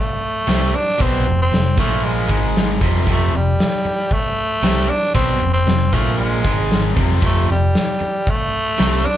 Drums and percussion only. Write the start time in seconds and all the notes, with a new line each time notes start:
0.48 snare, open hi-hat
0.64 snare
0.90 snare
1.00 kick, open hi-hat
1.53 snare, open hi-hat
1.78 kick
2.04 open hi-hat
2.29 kick
2.56 snare, open hi-hat
2.70 snare
2.81 kick
2.96 snare
3.07 kick, open hi-hat
3.59 snare, open hi-hat
4.11 kick, open hi-hat
4.63 snare, open hi-hat
5.03 snare
5.14 kick, open hi-hat
5.67 snare, open hi-hat
5.93 kick
6.19 open hi-hat
6.45 kick
6.71 snare, open hi-hat
6.97 kick
7.10 snare
7.22 kick, open hi-hat
7.74 snare, open hi-hat
8.27 kick, open hi-hat
8.78 snare, open hi-hat
8.93 snare